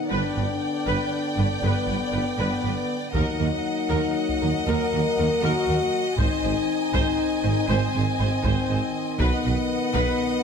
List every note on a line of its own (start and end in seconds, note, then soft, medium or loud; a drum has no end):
0.00 3.11 B3 soft
0.00 0.10 D#4 medium
0.10 0.21 G1 medium
0.10 0.20 G1 soft
0.10 0.18 G2 soft
0.10 3.11 D3 soft
0.10 1.62 D4 medium
0.10 0.34 B4 medium
0.10 3.10 D5 soft
0.10 3.14 G5 soft
0.36 0.46 G1 soft
0.36 0.44 G2 soft
0.36 0.44 B4 soft
0.87 0.97 G1 soft
0.87 0.95 G1 soft
0.87 0.95 G2 soft
0.87 1.10 B4 medium
1.37 1.48 G1 soft
1.37 1.46 G1 soft
1.37 1.45 G2 soft
1.37 1.46 B4 soft
1.62 1.70 G1 medium
1.62 1.73 G1 medium
1.62 1.71 G2 medium
1.62 2.38 B3 medium
1.62 1.87 B4 soft
1.87 1.95 G1 soft
1.87 1.98 G1 soft
1.87 1.96 G2 soft
1.87 1.96 B4 soft
2.13 2.23 G1 soft
2.13 2.21 G1 soft
2.13 2.22 G2 soft
2.13 2.21 B4 soft
2.38 2.46 G1 medium
2.38 2.49 G1 medium
2.38 2.46 G2 medium
2.38 2.97 B3 medium
2.38 2.62 B4 medium
2.64 2.74 G1 soft
2.64 2.72 G1 soft
2.64 2.73 G2 soft
2.64 2.72 B4 soft
3.14 3.22 D#2 medium
3.14 3.24 D#2 medium
3.14 3.23 D#2 medium
3.14 6.03 F#3 soft
3.14 6.03 A#3 soft
3.14 4.64 D#4 medium
3.14 3.38 A#4 medium
3.14 9.19 D#5 medium
3.14 6.15 F#5 medium
3.14 taiko soft
3.39 3.48 D#2 soft
3.39 3.50 D#2 soft
3.39 3.48 D#2 soft
3.39 3.47 A#4 soft
3.90 4.00 D#2 medium
3.90 3.98 D#2 soft
3.90 3.99 D#2 medium
3.90 4.14 A#4 medium
4.29 taiko soft
4.41 4.49 D#2 soft
4.41 4.50 D#2 soft
4.41 4.53 D#2 soft
4.41 4.49 A#4 soft
4.67 4.75 D#2 medium
4.67 4.78 D#2 medium
4.67 4.76 D#2 medium
4.67 4.91 A#4 medium
4.67 5.42 A#4 medium
4.93 5.01 D#2 soft
4.93 5.03 D#2 soft
4.93 5.01 A#4 soft
5.18 5.26 D#2 soft
5.18 5.28 D#2 soft
5.18 5.27 D#2 soft
5.18 5.26 A#4 soft
5.43 5.51 D#2 medium
5.43 5.53 D#2 medium
5.43 5.51 D#2 medium
5.43 6.19 F#4 medium
5.43 5.66 A#4 medium
5.68 5.76 D#2 soft
5.68 5.79 D#2 soft
5.68 5.77 D#2 soft
5.68 5.76 A#4 medium
6.17 6.25 G#1 medium
6.17 6.29 G#1 medium
6.17 6.26 G#2 medium
6.17 10.43 D#3 medium
6.17 9.17 C4 medium
6.17 7.66 D#4 medium
6.17 6.41 C5 medium
6.17 9.20 G#5 medium
6.17 taiko medium
6.43 6.54 G#1 soft
6.43 6.52 G#1 soft
6.43 6.51 G#2 soft
6.43 6.51 C5 soft
6.93 7.02 G#1 medium
6.93 7.04 G#1 medium
6.93 7.02 G#2 medium
6.93 7.17 C5 medium
6.93 taiko medium
7.43 7.52 G#1 soft
7.43 7.55 G#1 soft
7.43 7.52 G#2 soft
7.43 7.51 C5 soft
7.68 7.79 G#1 medium
7.68 7.78 G#1 medium
7.68 7.77 G#2 medium
7.68 8.42 C4 medium
7.68 7.92 C5 medium
7.94 8.02 G#1 soft
7.94 8.05 G#1 soft
7.94 8.03 G#2 soft
7.94 8.02 C5 medium
8.19 8.28 G#1 soft
8.19 8.30 G#1 soft
8.19 8.27 G#2 soft
8.19 8.27 C5 soft
8.43 8.55 G#1 medium
8.43 8.53 G#1 medium
8.43 8.51 G#2 medium
8.43 9.18 C4 medium
8.43 8.67 C5 medium
8.43 taiko medium
8.69 8.80 G#1 soft
8.69 8.78 G#1 soft
8.69 8.77 G#2 soft
8.69 8.77 C5 soft
9.19 9.30 B1 medium
9.19 9.28 B1 medium
9.19 9.27 B2 medium
9.19 10.43 B3 medium
9.19 9.43 B4 medium
9.19 10.43 D#5 medium
9.19 10.43 F#5 medium
9.19 taiko medium
9.44 9.55 B1 soft
9.44 9.54 B1 soft
9.44 9.52 B2 soft
9.44 9.54 B4 soft
9.94 10.03 B1 medium
9.94 10.05 B1 medium
9.94 10.02 B2 medium
9.94 10.18 B4 medium
9.94 taiko medium